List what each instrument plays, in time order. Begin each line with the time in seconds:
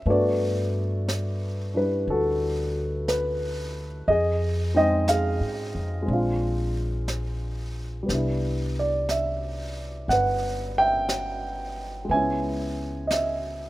Already playing: upright piano E5
0.06 upright bass G2, upright piano A3 B3 D4 F#4, brush sweep
0.10 upright piano B4 D5
1.08 brush sweep, snare, hi-hat pedal
1.74 upright piano G3 D4 E4 B4
2.07 upright bass D2, upright piano F#4 A4, brush sweep
3.08 upright piano B4, brush sweep, snare, hi-hat pedal
4.08 upright bass F2, upright piano G#4 D#5, brush sweep
4.74 upright piano G#3 C4 D#4 D#5 G5
5.08 upright piano G#4 F5, brush sweep, snare, hi-hat pedal
5.40 upright bass G#2
5.75 upright bass F2
6.02 upright piano G#3 C4
6.08 upright bass A#1, upright piano D4, brush sweep
6.13 upright piano F4
7.08 brush sweep, snare, hi-hat pedal
8.03 upright piano G3 B3
8.09 upright bass C2, upright piano D4, brush sweep, snare
8.14 upright piano E4
8.79 upright piano D5
9.09 upright piano E5, brush sweep, snare, hi-hat pedal
10.08 upright bass G1, upright piano F#5, brush sweep, snare
10.13 upright piano B4
10.78 upright piano E5 G5
11.09 brush sweep, snare, hi-hat pedal
12.05 upright piano G#3
12.09 upright bass C#2, upright piano B3 E5 G#5, brush sweep
12.13 upright piano C#4 E4
13.07 upright piano D#5, brush sweep, snare, hi-hat pedal
13.12 upright piano E5